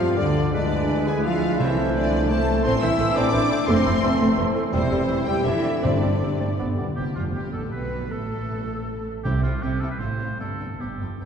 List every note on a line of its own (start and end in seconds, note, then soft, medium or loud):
0.00 0.18 F2 loud
0.00 0.16 F3 medium
0.00 0.17 F3 medium
0.00 0.18 F3 medium
0.00 0.19 F3 loud
0.00 0.20 F4 medium
0.00 0.15 F5 medium
0.00 0.16 F5 medium
0.00 0.17 F5 medium
0.00 0.18 F5 loud
0.17 0.53 D2 medium
0.17 0.52 D3 medium
0.17 0.53 D3 medium
0.17 0.52 D3 medium
0.17 0.53 D3 medium
0.17 0.54 D3 medium
0.17 0.54 D4 medium
0.17 0.52 D5 medium
0.17 0.52 D5 loud
0.17 0.52 D5 medium
0.52 1.56 D2 medium
0.52 1.06 D3 medium
0.52 1.57 E3 medium
0.52 1.61 G#3 medium
0.52 1.56 G#3 medium
0.52 1.55 D4 medium
0.52 1.09 D4 medium
0.52 2.61 E4 medium
0.52 1.56 B4 medium
0.52 1.62 B4 medium
0.52 0.83 D5 medium
0.52 1.06 D5 medium
0.52 1.06 D5 loud
0.56 1.57 G#3 medium
1.05 1.25 G#3 medium
1.05 1.28 G#4 medium
1.05 1.24 G#5 medium
1.05 1.25 G#5 loud
1.05 1.14 G#5 medium
1.24 1.60 F3 loud
1.24 1.63 F4 loud
1.24 1.59 F5 loud
1.24 1.59 F5 medium
1.24 1.59 F5 loud
1.59 2.64 C2 medium
1.59 2.09 C3 loud
1.59 2.29 E3 medium
1.59 1.95 E3 medium
1.59 2.30 A3 medium
1.59 2.28 A3 medium
1.59 2.61 A3 medium
1.59 2.29 C4 medium
1.59 1.95 E4 medium
1.59 2.29 C5 medium
1.59 1.95 E5 loud
1.59 1.95 E5 medium
1.95 2.29 D3 medium
1.95 2.33 D4 medium
1.95 2.29 D5 medium
1.95 2.29 D5 loud
1.95 2.30 D5 medium
2.29 2.61 E3 medium
2.29 2.62 A3 medium
2.29 2.64 A3 medium
2.29 2.64 C4 medium
2.29 2.65 A4 loud
2.29 2.63 C5 medium
2.29 2.64 C5 medium
2.29 2.63 A5 medium
2.29 2.64 A5 loud
2.29 2.65 A5 loud
2.63 2.72 A1 loud
2.63 3.66 E3 medium
2.63 3.66 A3 medium
2.63 2.73 A3 medium
2.63 2.80 C4 medium
2.63 2.72 C4 loud
2.63 3.67 C4 medium
2.63 4.69 E4 medium
2.63 2.72 C5 medium
2.63 3.67 C5 medium
2.63 2.81 C6 loud
2.63 2.82 C6 loud
2.67 2.74 C5 loud
2.81 2.90 A1 medium
2.81 2.89 E3 medium
2.81 2.90 A3 medium
2.81 3.16 E4 medium
2.81 2.90 C5 medium
2.81 3.16 E5 loud
2.81 3.16 E6 loud
2.81 3.17 E6 medium
2.99 3.06 A1 medium
2.99 3.06 A3 medium
2.99 3.08 A3 medium
2.99 3.07 C5 medium
3.15 3.24 A1 loud
3.15 3.25 A3 medium
3.15 3.32 C4 loud
3.15 3.69 D4 loud
3.15 3.25 C5 medium
3.15 3.68 D5 loud
3.15 3.67 D6 loud
3.15 3.68 D6 loud
3.15 3.69 D6 loud
3.33 3.41 A1 medium
3.33 3.40 E3 medium
3.33 3.42 A3 medium
3.33 3.42 C5 medium
3.52 3.60 A3 medium
3.52 3.59 C5 medium
3.67 3.76 F1 loud
3.67 4.71 E3 medium
3.67 4.71 A3 medium
3.67 3.85 A3 loud
3.67 3.77 A3 medium
3.67 4.71 C4 loud
3.67 4.38 C4 loud
3.67 4.71 C5 loud
3.67 4.37 C5 loud
3.67 3.77 E5 medium
3.67 4.38 C6 loud
3.86 3.94 F1 medium
3.86 3.93 E3 medium
3.86 3.94 A3 medium
3.86 3.94 E5 medium
4.03 4.11 F1 medium
4.03 4.10 F3 medium
4.03 4.12 A3 medium
4.03 4.11 E5 medium
4.19 4.29 F1 loud
4.19 4.36 A3 loud
4.19 4.29 A3 medium
4.19 4.28 E5 medium
4.37 4.46 F1 medium
4.37 4.45 E3 medium
4.37 4.46 A3 medium
4.37 4.46 E5 medium
4.55 4.64 A3 medium
4.55 4.63 E5 medium
4.72 4.81 E1 loud
4.72 5.24 C3 loud
4.72 5.45 E3 medium
4.72 4.81 G3 medium
4.72 4.90 G3 medium
4.72 5.46 G3 medium
4.72 5.29 C4 loud
4.72 5.45 C4 medium
4.72 5.44 E4 medium
4.72 5.23 C5 loud
4.72 5.24 C5 medium
4.72 5.24 C5 loud
4.72 5.45 C5 medium
4.72 4.82 E5 medium
4.90 4.99 E1 medium
4.90 4.98 C3 medium
4.90 5.00 G3 medium
4.90 4.99 E5 medium
5.08 5.17 E1 medium
5.08 5.16 E3 medium
5.08 5.18 G3 medium
5.08 5.17 E5 medium
5.26 5.35 E1 medium
5.26 5.44 G3 medium
5.26 5.36 G3 medium
5.26 5.46 G3 medium
5.26 5.46 G4 medium
5.26 5.36 E5 medium
5.26 5.45 G5 loud
5.26 5.46 G5 medium
5.44 5.54 F1 medium
5.44 5.83 D3 medium
5.44 5.53 D3 medium
5.44 5.83 E3 medium
5.44 5.83 F3 medium
5.44 5.55 A3 medium
5.44 6.18 D4 medium
5.44 5.84 D4 medium
5.44 5.83 E4 loud
5.44 5.84 A4 medium
5.44 5.55 D5 medium
5.44 5.83 E5 loud
5.44 5.83 E5 medium
5.44 5.84 E5 loud
5.63 5.74 A3 medium
5.63 5.72 D5 medium
5.82 5.92 G1 medium
5.82 6.37 G2 loud
5.82 6.59 D3 medium
5.82 6.43 D3 medium
5.82 6.43 G3 medium
5.82 6.01 C4 medium
5.82 5.92 C4 medium
5.82 6.58 D4 medium
5.82 6.44 D4 medium
5.82 6.44 C5 medium
5.82 5.91 D5 medium
5.82 6.59 D5 medium
5.82 6.60 D5 medium
5.82 6.58 D5 medium
6.01 6.11 G1 medium
6.01 6.09 D3 medium
6.01 6.12 C4 medium
6.01 6.11 D5 medium
6.20 6.31 G1 medium
6.20 6.39 G3 medium
6.20 6.30 C4 medium
6.20 6.29 D5 medium
6.40 6.48 G1 medium
6.40 6.47 A3 medium
6.40 6.49 C4 medium
6.40 6.49 D5 medium
6.59 6.67 G1 medium
6.59 6.65 G2 soft
6.59 6.79 D3 medium
6.59 6.79 G3 medium
6.59 6.78 B3 medium
6.59 6.68 B3 medium
6.59 6.69 D4 medium
6.59 6.79 B4 medium
6.59 6.68 D5 medium
6.66 6.73 G2 soft
6.74 6.80 G2 medium
6.74 6.95 G3 medium
6.74 6.86 B3 medium
6.78 6.87 G2 medium
6.78 6.87 D5 medium
6.88 6.96 G2 medium
6.96 7.05 G1 medium
6.96 7.05 G2 medium
6.96 7.50 C3 medium
6.96 7.15 G3 medium
6.96 7.05 G4 medium
6.96 7.15 G4 medium
7.15 7.35 F1 medium
7.15 7.35 F2 medium
7.15 7.35 F3 medium
7.15 7.24 F4 medium
7.15 7.23 F4 medium
7.15 7.36 F4 medium
7.34 7.55 G1 medium
7.34 7.54 G2 medium
7.34 7.54 G3 medium
7.34 7.43 G4 medium
7.34 7.54 G4 medium
7.53 7.73 A1 medium
7.53 7.73 A2 medium
7.53 7.73 A3 medium
7.53 7.62 A4 medium
7.53 7.74 A4 medium
7.72 8.11 B1 medium
7.72 8.11 B2 medium
7.72 8.11 B3 medium
7.72 8.13 B4 medium
7.72 8.11 B4 medium
8.10 9.06 A1 medium
8.10 9.06 A2 medium
8.10 9.06 A3 medium
8.10 9.04 A4 medium
8.10 9.06 A4 medium
9.24 9.58 C2 medium
9.24 9.77 C3 medium
9.24 9.58 C3 medium
9.24 9.32 C4 medium
9.24 9.33 E4 medium
9.24 9.42 G4 loud
9.24 9.32 G5 medium
9.43 9.52 C4 medium
9.43 9.53 E4 medium
9.43 9.64 F4 medium
9.43 9.51 G5 medium
9.62 9.96 C2 medium
9.62 9.96 C3 medium
9.62 9.70 C4 medium
9.62 9.72 E4 medium
9.62 9.82 G4 medium
9.62 9.71 G5 medium
9.80 9.89 C4 medium
9.80 9.90 E4 medium
9.80 9.90 A4 medium
9.80 9.89 G5 medium
9.90 10.00 B4 medium
9.99 10.35 A1 medium
9.99 10.35 A2 medium
9.99 10.07 C4 soft
9.99 10.39 C5 medium
9.99 10.08 F5 medium
10.03 10.10 F4 medium
10.19 10.28 C4 soft
10.19 10.30 F4 soft
10.19 10.27 F5 soft
10.39 10.75 G1 medium
10.39 10.75 G2 medium
10.39 10.48 B3 soft
10.39 10.49 D4 soft
10.39 10.82 A4 medium
10.39 10.48 G5 soft
10.60 10.68 B3 soft
10.60 10.69 D4 soft
10.60 10.68 G5 soft
10.79 11.15 G1 soft
10.79 10.98 G2 soft
10.79 10.87 B3 soft
10.79 10.89 D4 soft
10.79 11.20 G4 medium
10.79 10.89 G5 soft
11.00 11.08 F2 soft
11.00 11.08 B3 soft
11.00 11.08 D4 soft
11.00 11.09 G5 soft
11.20 11.25 G1 soft
11.20 11.25 G2 soft
11.20 11.25 B3 soft
11.20 11.25 D4 soft
11.20 11.25 G5 soft